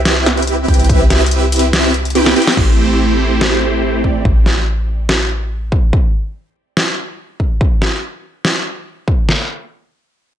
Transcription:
Already playing: 808-style bass C2, supersaw synth C4 E4 G4 B4 E5
0.05 snare, closed hi-hat
0.26 snare, closed hi-hat
0.37 closed hi-hat
0.42 closed hi-hat
0.47 closed hi-hat
0.68 808-style bass C2, supersaw synth C4 E4 G4 B4 G5, kick, closed hi-hat
0.74 closed hi-hat
0.80 closed hi-hat
0.84 closed hi-hat
0.89 supersaw synth C4 E4 G4 B4 E5, kick, closed hi-hat
1.10 snare, closed hi-hat
1.22 closed hi-hat
1.26 closed hi-hat
1.31 closed hi-hat
1.52 closed hi-hat, open hi-hat
1.59 closed hi-hat
1.73 snare, closed hi-hat
1.94 closed hi-hat
2.05 closed hi-hat
2.10 closed hi-hat
2.15 supersaw synth C4 E4 G4 B4 G5, closed hi-hat, high tom
2.26 snare
2.36 supersaw synth C4 E4 G4 B4 G5, closed hi-hat
2.42 closed hi-hat
2.47 snare, closed hi-hat
2.52 closed hi-hat
2.57 808-style bass A1, supersaw synth A3 C4 E4 G4 C5, kick, crash
3.41 snare
4.04 supersaw synth A3 C4 E4 G4 D5, kick
4.25 808-style bass A1, kick
4.46 snare
5.09 snare
5.72 kick
5.93 kick
6.77 snare
7.40 kick
7.61 kick
7.82 snare
8.45 snare
9.08 kick
9.29 snare

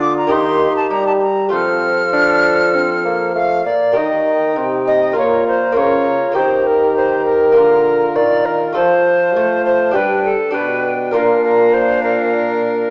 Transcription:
Already playing: lute D3 A#3 D4 F4, trombone D3, bassoon D4, recorder F4
0.01 flute D6
0.17 flute A#5
0.27 lute D#3 A#3 G4 D#5, trombone D#3, bassoon D#4
0.31 recorder G4, flute C6
0.77 flute A5
0.91 lute G3, trombone G3, flute A#5
1.07 flute A5
1.21 flute A#5
1.49 trombone F3, lute F3 A3 F4 C5, bassoon C4, recorder A4
1.53 flute F6
2.13 bassoon D4
2.75 bassoon C4
3.05 bassoon A#3
3.35 bassoon A3, recorder F5
3.65 bassoon A#3, recorder D5
3.92 lute A#3 G4 A#4
3.96 lute D#3, trombone D#3, bassoon D#4, recorder D#5, flute G5
4.56 lute C3, trombone C3
4.87 recorder D#5
5.12 lute A#2 A#3 F4 A#4
5.16 trombone A#2, bassoon F4, recorder C#5, flute A#5
5.48 recorder C5
5.72 lute A#3 F4 A#4
5.76 lute C#3, trombone C#3, bassoon F4, recorder C#5, flute A#5
6.32 lute D#3 A#3 D#4 G4, bassoon G4
6.36 trombone D#3, recorder C5, flute A#5
6.67 recorder A#4
6.96 recorder C5
7.25 recorder A#4
7.52 lute A#3 F4
7.56 lute D3, trombone D3, bassoon F4, flute A#5
8.16 lute D#3, trombone D#3, bassoon F4, recorder D5, flute A#5
8.45 recorder A#4
8.73 lute F3 A3 F4 A4, trombone F3, recorder C5, flute A5
8.78 bassoon F4
9.36 trombone A3, lute A3
9.65 recorder C5
9.91 lute G3 D4 G4, recorder B4
9.95 trombone G3, bassoon D4, flute G5
10.25 recorder A4
10.51 lute B2 D4 G4, recorder B4
10.55 trombone B2, bassoon D4, flute G5
11.11 lute A#2 D4 F4 A#4, bassoon D4, recorder A#4
11.15 trombone A#2, flute F5
11.44 recorder A#4
11.74 recorder C5
12.03 recorder A#4

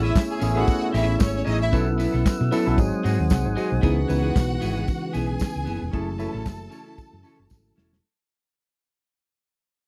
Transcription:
Already playing: fingered electric bass A1, tine electric piano A3 B3 C#4 E4 G#4, tonewheel organ C#5 E5 G#5 E6
0.03 clean electric guitar C#4 E4 G#4, violin section E4 E5
0.14 muted clean electric guitar stroke, kick, snare, clap, closed hi-hat, tambourine
0.29 violin section G#4 G#5, muted clean electric guitar stroke
0.39 fingered electric bass A1, tine electric piano A3 B3 C#4 E4 G#4, clean electric guitar C#4 E4 G#4, open hi-hat, tambourine
0.55 tine electric piano A3 B3 C#4 E4 G#4, clean electric guitar C#4 E4 G#4, violin section F#4 F#5
0.67 muted clean electric guitar stroke, kick, closed hi-hat, tambourine
0.81 muted clean electric guitar stroke
0.92 fingered electric bass A1, clean electric guitar C#4 E4 G#4, violin section E4 E5, open hi-hat, tambourine
1.07 muted clean electric guitar stroke
1.20 fingered electric bass G#1, violin section C#4 C#5, kick, snare, clap, closed hi-hat, tambourine
1.34 violin section C#4 C#5, muted clean electric guitar stroke
1.45 fingered electric bass A1, clean electric guitar C#4 E4 G#4, violin section D#4 D#5, open hi-hat, tambourine
1.60 violin section E4 E5, muted clean electric guitar stroke
1.72 fingered electric bass B1, tine electric piano F#3 B3 C#4 E4 A4, clean electric guitar B3 E4 A4, tonewheel organ B4 F#5 E6, kick, closed hi-hat, tambourine
1.87 muted clean electric guitar stroke
1.98 clean electric guitar B3 E4 B4, open hi-hat, tambourine
2.12 fingered electric bass B1, clean electric guitar B3 E4 A4
2.25 muted clean electric guitar stroke, kick, snare, clap, closed hi-hat, tambourine
2.40 fingered electric bass B2, muted clean electric guitar stroke, snare
2.51 tine electric piano F#3 B3 C#4 E4 A4 B4, clean electric guitar B3 E4 A4, open hi-hat, tambourine
2.66 fingered electric bass B1, tine electric piano F#3 B3 C#4 E4 A4, clean electric guitar E4 A4
2.77 fingered electric bass G#1, tine electric piano F#3 G#3 C4 D#4 G#4 D#5, tonewheel organ C5 G#5 D#6, muted clean electric guitar stroke, kick, closed hi-hat, tambourine
2.93 muted clean electric guitar stroke
3.03 fingered electric bass G#2, clean electric guitar C4 F#4 G#4, tine electric piano F#5, open hi-hat, tambourine
3.19 fingered electric bass D#2, muted clean electric guitar stroke
3.30 fingered electric bass C2, tine electric piano C4 G#4 F#5, muted clean electric guitar stroke, kick, snare, clap, closed hi-hat, tambourine
3.45 fingered electric bass G#1, tine electric piano D#4 C5, muted clean electric guitar stroke
3.56 clean electric guitar C4 F#4 G#4, tine electric piano F#4 D#5 G#5, open hi-hat, tambourine
3.71 fingered electric bass B1, tine electric piano D#4 C5, muted clean electric guitar stroke
3.81 fingered electric bass C#2, tonewheel organ C#3 E3 G#3 B3, tine electric piano E3 B3 C#4 D#4 G#4, clean electric guitar B3 E4 G#4, violin section F#4 F#5, kick, closed hi-hat, tambourine
3.96 muted clean electric guitar stroke
4.08 fingered electric bass C#2, tine electric piano E3 B3 C#4 D#4 B4, clean electric guitar B3 E4 B4, open hi-hat, tambourine
4.22 clean electric guitar B3 E4 G#4
4.35 fingered electric bass B1, muted clean electric guitar stroke, kick, snare, clap, closed hi-hat, tambourine
4.49 muted clean electric guitar stroke
4.60 fingered electric bass G#1, clean electric guitar B3 E4 G#4, open hi-hat, tambourine
4.75 clean electric guitar B3 E4 G#4
4.87 muted clean electric guitar stroke, kick, closed hi-hat, tambourine
5.01 muted clean electric guitar stroke
5.13 fingered electric bass B1, clean electric guitar B3 E4 G#4, violin section G#4 G#5, open hi-hat, tambourine
5.27 muted clean electric guitar stroke
5.39 muted clean electric guitar stroke, kick, snare, clap, closed hi-hat, tambourine
5.54 fingered electric bass C#2, muted clean electric guitar stroke
5.65 fingered electric bass F#1, clean electric guitar B3 E4 G#4, open hi-hat, tambourine
5.81 fingered electric bass E1, muted clean electric guitar stroke
5.91 fingered electric bass F#1, tonewheel organ C#3 F#3 A3, tine electric piano F#3 A3 C#4 E4 G#4, clean electric guitar C#4 E4 A4, violin section A4 A5, kick, closed hi-hat
6.07 muted clean electric guitar stroke
6.18 tine electric piano F#3 A3 C#4 E4 A4, clean electric guitar C#4 E4 B4, open hi-hat, tambourine
6.33 fingered electric bass A1, clean electric guitar C#4 E4 A4
6.44 fingered electric bass F#1, muted clean electric guitar stroke, kick, snare, clap, closed hi-hat, tambourine
6.59 muted clean electric guitar stroke
6.70 clean electric guitar C#4 E4 A4, open hi-hat, tambourine
6.85 clean electric guitar C#4 E4 A4
6.97 muted clean electric guitar stroke, muted fingered electric bass stroke, kick, closed hi-hat, tambourine
7.12 fingered electric bass F#2, muted clean electric guitar stroke
7.23 clean electric guitar C#4 E4 A4, open hi-hat, tambourine
7.38 fingered electric bass F#1, muted clean electric guitar stroke
7.50 fingered electric bass G#1, muted clean electric guitar stroke, kick, snare, tambourine
7.65 muted clean electric guitar stroke
7.76 fingered electric bass E1, clean electric guitar C#4 E4 A4, snare, tambourine
7.92 muted clean electric guitar stroke, snare

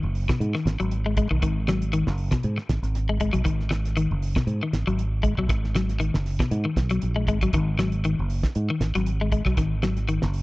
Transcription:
0.03 fingered electric bass F#1
0.15 open hi-hat
0.29 clean electric guitar B2, kick, snare, closed hi-hat
0.40 fingered electric bass G#2, closed hi-hat
0.55 clean electric guitar D#3, snare
0.65 fingered electric bass G#1, snare, closed hi-hat
0.80 fingered electric bass G#1, clean electric guitar F#3, closed hi-hat
0.91 closed hi-hat
1.06 clean electric guitar G#3
1.17 clean electric guitar G#3, kick, closed hi-hat
1.31 fingered electric bass B1, clean electric guitar D#3, kick
1.42 fingered electric bass G#1, clean electric guitar D#3, kick, closed hi-hat
1.68 clean electric guitar F#3, snare, closed hi-hat
1.82 closed hi-hat
1.93 clean electric guitar D#3, closed hi-hat
2.07 fingered electric bass F#1, snare
2.18 open hi-hat
2.31 clean electric guitar B2, kick, snare, closed hi-hat
2.43 fingered electric bass G#2, closed hi-hat
2.58 muted clean electric guitar stroke, snare
2.69 fingered electric bass G#1, kick, snare, closed hi-hat
2.83 fingered electric bass G#1, snare, closed hi-hat
2.95 snare, closed hi-hat
3.09 clean electric guitar G#3
3.20 clean electric guitar G#3, kick, closed hi-hat
3.33 fingered electric bass B1, clean electric guitar F#3, kick, closed hi-hat
3.45 fingered electric bass G#1, clean electric guitar D#3, kick, closed hi-hat
3.60 snare
3.71 muted clean electric guitar stroke, snare, closed hi-hat
3.85 snare, closed hi-hat
3.97 clean electric guitar D#3, closed hi-hat
4.11 fingered electric bass F#1
4.22 open hi-hat
4.36 clean electric guitar B2, kick, snare, closed hi-hat
4.47 fingered electric bass G#2, closed hi-hat
4.63 clean electric guitar D#3
4.73 fingered electric bass G#1, snare, closed hi-hat
4.87 fingered electric bass G#1, clean electric guitar F#3, closed hi-hat
4.99 closed hi-hat
5.23 clean electric guitar G#3, kick, closed hi-hat
5.38 fingered electric bass B1, clean electric guitar F#3, kick
5.49 fingered electric bass G#1, muted clean electric guitar stroke, kick, snare, closed hi-hat
5.64 snare
5.75 clean electric guitar F#3, snare, closed hi-hat
5.89 snare, closed hi-hat
6.00 clean electric guitar D#3, closed hi-hat
6.14 fingered electric bass F#1, snare
6.26 snare, open hi-hat
6.40 clean electric guitar B2, kick, snare, closed hi-hat
6.51 fingered electric bass G#2, closed hi-hat
6.65 clean electric guitar D#3
6.76 fingered electric bass B1, kick, snare, closed hi-hat
6.90 clean electric guitar F#3, snare, closed hi-hat
7.02 fingered electric bass A#1, closed hi-hat
7.16 clean electric guitar G#3
7.28 fingered electric bass G#1, clean electric guitar G#3, kick, closed hi-hat
7.41 clean electric guitar F#3, kick, closed hi-hat
7.53 fingered electric bass G#1, clean electric guitar D#3, kick, closed hi-hat
7.79 clean electric guitar F#3, snare, closed hi-hat
7.92 closed hi-hat
8.04 clean electric guitar D#3, closed hi-hat
8.19 fingered electric bass F#1
8.30 open hi-hat
8.43 kick, snare, closed hi-hat
8.55 fingered electric bass G#2, closed hi-hat
8.70 clean electric guitar D#3
8.80 fingered electric bass G#1, snare, closed hi-hat
8.95 fingered electric bass G#1, clean electric guitar F#3, snare, closed hi-hat
9.06 closed hi-hat
9.21 clean electric guitar G#3
9.32 clean electric guitar G#3, kick, closed hi-hat
9.45 fingered electric bass B1, clean electric guitar F#3, kick, snare
9.57 fingered electric bass G#1, clean electric guitar D#3, kick, snare, closed hi-hat
9.83 clean electric guitar F#3, snare, closed hi-hat
9.97 snare, closed hi-hat
10.08 clean electric guitar D#3, closed hi-hat
10.22 fingered electric bass F#1, snare
10.34 open hi-hat

